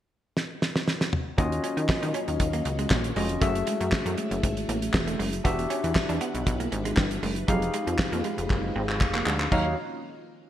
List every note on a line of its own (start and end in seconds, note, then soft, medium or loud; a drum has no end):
0.37 snare medium
0.62 snare medium
0.76 snare medium
0.88 snare medium
1.01 snare medium
1.13 mid tom loud
1.38 1.60 D#2 loud
1.38 3.40 D#3 medium
1.38 3.40 F#3 medium
1.38 1.49 A#3 medium
1.38 3.40 A#3 medium
1.38 3.12 C#4 medium
1.38 5.41 C#4 medium
1.38 3.13 F4 medium
1.38 3.13 F#4 medium
1.38 3.13 D#5 medium
1.38 3.40 F5 medium
1.38 kick loud
1.38 closed hi-hat medium
1.52 closed hi-hat soft
1.64 1.75 C#4 medium
1.64 closed hi-hat medium
1.77 1.87 D#3 loud
1.77 muted clean electric guitar stroke soft
1.77 closed hi-hat medium
1.89 1.94 D#3 soft
1.89 muted clean electric guitar stroke soft
1.89 kick loud
1.89 snare loud
1.89 clap medium
2.03 2.13 D#3 loud
2.03 2.13 D#4 medium
2.03 closed hi-hat medium
2.14 2.26 C#4 medium
2.14 closed hi-hat medium
2.28 2.38 D#2 medium
2.28 closed hi-hat medium
2.40 2.61 D#2 medium
2.40 kick loud
2.40 closed hi-hat medium
2.53 2.63 A#3 medium
2.53 closed hi-hat medium
2.65 2.87 C#2 medium
2.65 muted clean electric guitar stroke soft
2.65 closed hi-hat medium
2.79 2.89 G#3 medium
2.79 closed hi-hat medium
2.90 3.12 A#1 medium
2.90 kick loud
2.90 snare loud
2.90 clap medium
3.04 closed hi-hat medium
3.16 3.38 F1 loud
3.16 3.28 G#3 medium
3.16 3.41 C#4 medium
3.16 3.42 F4 medium
3.16 3.40 F#4 soft
3.16 3.42 D#5 medium
3.16 open hi-hat medium
3.29 closed hi-hat medium
3.41 3.63 F#1 loud
3.41 5.43 F#3 medium
3.41 3.53 F#3 medium
3.41 5.41 A3 medium
3.41 5.43 A3 loud
3.41 5.43 E4 medium
3.41 5.41 F#4 medium
3.41 5.43 G#4 medium
3.41 5.41 G#4 medium
3.41 5.41 E5 medium
3.41 kick loud
3.41 closed hi-hat medium
3.55 closed hi-hat soft
3.67 3.79 G#3 medium
3.67 closed hi-hat medium
3.81 3.91 F#2 medium
3.81 muted clean electric guitar stroke soft
3.81 closed hi-hat soft
3.92 muted clean electric guitar stroke soft
3.92 kick loud
3.92 snare loud
3.92 clap medium
4.06 4.16 F#2 loud
4.06 4.16 A3 medium
4.06 closed hi-hat medium
4.18 4.29 G#3 medium
4.18 closed hi-hat medium
4.31 4.41 F#1 loud
4.31 closed hi-hat soft
4.43 4.65 G#1 medium
4.43 kick loud
4.43 closed hi-hat medium
4.57 closed hi-hat medium
4.69 4.90 A1 medium
4.69 4.80 A#3 medium
4.69 closed hi-hat medium
4.82 closed hi-hat medium
4.94 5.16 E1 loud
4.94 muted clean electric guitar stroke soft
4.94 kick loud
4.94 snare loud
4.94 clap medium
5.07 5.17 A3 medium
5.07 closed hi-hat medium
5.19 5.41 F#1 loud
5.19 5.31 G#3 medium
5.19 open hi-hat medium
5.33 closed hi-hat medium
5.44 5.66 E1 loud
5.44 7.46 E3 medium
5.44 5.56 B3 medium
5.44 7.46 B3 medium
5.44 7.44 D4 medium
5.44 7.46 D4 medium
5.44 7.44 F#4 medium
5.44 7.44 G4 medium
5.44 9.48 B4 medium
5.44 7.45 E5 medium
5.44 7.46 F#5 medium
5.44 kick loud
5.44 closed hi-hat medium
5.59 closed hi-hat soft
5.70 5.82 C#4 medium
5.70 closed hi-hat medium
5.84 5.94 E2 loud
5.84 muted clean electric guitar stroke soft
5.84 closed hi-hat soft
5.95 6.01 E2 soft
5.95 muted clean electric guitar stroke soft
5.95 kick loud
5.95 snare loud
5.95 clap medium
6.09 6.19 E2 medium
6.09 6.19 D4 medium
6.09 closed hi-hat medium
6.21 6.32 B3 medium
6.21 closed hi-hat medium
6.35 6.45 B1 medium
6.35 closed hi-hat soft
6.47 6.68 B1 loud
6.47 kick loud
6.47 closed hi-hat loud
6.60 6.70 A#3 medium
6.60 closed hi-hat medium
6.72 6.94 G#1 loud
6.72 muted clean electric guitar stroke soft
6.72 closed hi-hat medium
6.85 6.95 G#3 medium
6.85 closed hi-hat medium
6.97 7.19 G1 loud
6.97 kick loud
6.97 snare loud
6.97 clap medium
7.11 closed hi-hat medium
7.23 7.44 F#1 loud
7.23 7.34 G#3 medium
7.23 open hi-hat medium
7.36 closed hi-hat medium
7.48 7.70 F1 loud
7.48 9.50 F3 medium
7.48 7.60 F#3 medium
7.48 9.50 G#3 loud
7.48 9.50 C4 medium
7.48 9.47 D#4 medium
7.48 9.50 D#4 medium
7.48 9.48 G4 medium
7.48 9.48 G#4 medium
7.48 9.48 F5 medium
7.48 kick loud
7.48 closed hi-hat medium
7.62 closed hi-hat soft
7.74 7.85 G#3 medium
7.74 closed hi-hat medium
7.87 7.97 F2 loud
7.87 muted clean electric guitar stroke soft
7.87 closed hi-hat medium
7.99 muted clean electric guitar stroke soft
7.99 kick loud
7.99 snare loud
7.99 clap medium
8.12 8.23 F2 loud
8.12 8.23 A#3 medium
8.12 closed hi-hat medium
8.24 8.36 G#3 medium
8.24 closed hi-hat medium
8.38 8.48 F1 medium
8.38 closed hi-hat soft
8.50 8.72 F#1 medium
8.50 kick loud
8.50 clap medium
8.76 9.02 G#1 loud
8.76 8.87 C4 medium
8.89 clap medium
9.01 9.22 F1 medium
9.01 muted clean electric guitar stroke soft
9.01 kick loud
9.01 clap medium
9.14 9.25 A#3 medium
9.14 clap medium
9.26 9.48 D2 loud
9.26 9.38 G#3 medium
9.26 clap loud
9.40 clap medium
9.52 9.75 D#2 loud
9.52 9.76 D#3 medium
9.52 9.67 F#3 medium
9.52 9.76 A#3 medium
9.52 9.76 C#4 medium
9.52 9.76 D#4 medium
9.52 9.76 F4 medium
9.52 9.76 F#4 medium
9.52 9.76 C#5 medium
9.52 9.76 F5 medium
9.52 kick loud
9.52 crash medium